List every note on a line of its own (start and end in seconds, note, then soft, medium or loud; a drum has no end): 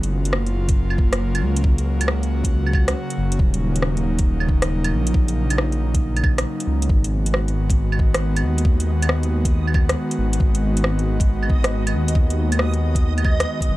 0.00 1.43 F#1 medium
0.00 6.86 C#3 medium
0.00 6.86 F#3 medium
0.00 3.36 A#3 medium
0.00 1.62 F4 medium
0.00 closed hi-hat soft
0.25 closed hi-hat soft
0.33 cross-stick loud
0.47 closed hi-hat soft
0.69 kick loud
0.69 closed hi-hat soft
0.90 claves medium
0.98 kick loud
1.13 cross-stick loud
1.13 closed hi-hat medium
1.35 closed hi-hat soft
1.35 claves medium
1.42 2.94 C#2 medium
1.56 closed hi-hat medium
1.64 3.38 F#4 medium
1.64 kick loud
1.78 closed hi-hat soft
2.01 closed hi-hat medium
2.01 claves medium
2.08 cross-stick loud
2.23 closed hi-hat soft
2.44 kick loud
2.44 closed hi-hat medium
2.66 claves soft
2.73 kick loud
2.73 claves medium
2.88 cross-stick loud
2.88 closed hi-hat medium
3.10 closed hi-hat soft
3.18 3.38 F#1 medium
3.32 closed hi-hat medium
3.39 4.94 D#1 loud
3.39 6.86 A#3 medium
3.39 6.87 D#4 medium
3.39 kick loud
3.54 closed hi-hat soft
3.76 closed hi-hat medium
3.82 cross-stick medium
3.97 closed hi-hat soft
4.19 kick loud
4.19 closed hi-hat medium
4.40 claves medium
4.49 kick loud
4.62 cross-stick loud
4.62 closed hi-hat medium
4.84 closed hi-hat soft
4.84 claves medium
4.92 6.45 A#1 medium
5.07 closed hi-hat medium
5.14 kick loud
5.28 closed hi-hat soft
5.50 closed hi-hat medium
5.50 claves medium
5.58 cross-stick loud
5.72 closed hi-hat soft
5.94 kick loud
5.94 closed hi-hat medium
6.17 closed hi-hat soft
6.17 claves medium
6.24 kick loud
6.24 claves medium
6.38 cross-stick loud
6.38 closed hi-hat medium
6.60 closed hi-hat soft
6.67 6.81 C#2 medium
6.81 6.89 C#2 medium
6.81 closed hi-hat medium
6.89 8.44 G#1 medium
6.89 13.77 D#3 medium
6.89 13.77 G#3 medium
6.89 13.77 B3 medium
6.89 13.77 F#4 medium
6.89 13.77 D#5 medium
6.89 kick loud
7.04 closed hi-hat soft
7.26 closed hi-hat medium
7.34 cross-stick loud
7.48 closed hi-hat soft
7.70 kick loud
7.70 closed hi-hat medium
7.92 claves medium
7.99 kick loud
8.14 cross-stick loud
8.14 closed hi-hat medium
8.36 closed hi-hat soft
8.36 claves medium
8.43 9.95 D#2 medium
8.58 closed hi-hat medium
8.65 kick loud
8.80 closed hi-hat soft
9.02 closed hi-hat medium
9.02 claves medium
9.09 cross-stick loud
9.23 closed hi-hat soft
9.45 kick loud
9.45 closed hi-hat medium
9.67 claves medium
9.74 kick loud
9.74 claves medium
9.89 cross-stick loud
9.89 closed hi-hat medium
10.11 closed hi-hat soft
10.19 10.39 G#1 medium
10.33 closed hi-hat medium
10.40 11.95 G#1 medium
10.40 kick loud
10.55 closed hi-hat soft
10.77 closed hi-hat medium
10.84 cross-stick loud
10.99 closed hi-hat soft
11.20 kick loud
11.20 closed hi-hat medium
11.43 claves medium
11.50 kick loud
11.64 cross-stick loud
11.64 closed hi-hat medium
11.87 closed hi-hat soft
11.87 claves medium
11.94 13.46 D#2 medium
12.08 closed hi-hat medium
12.15 kick loud
12.30 closed hi-hat soft
12.52 closed hi-hat medium
12.52 claves medium
12.59 cross-stick loud
12.74 closed hi-hat soft
12.95 kick loud
12.95 closed hi-hat medium
13.18 closed hi-hat soft
13.18 claves soft
13.25 kick loud
13.25 claves medium
13.40 cross-stick loud
13.40 closed hi-hat medium
13.61 kick medium
13.61 closed hi-hat soft
13.68 13.77 F#1 medium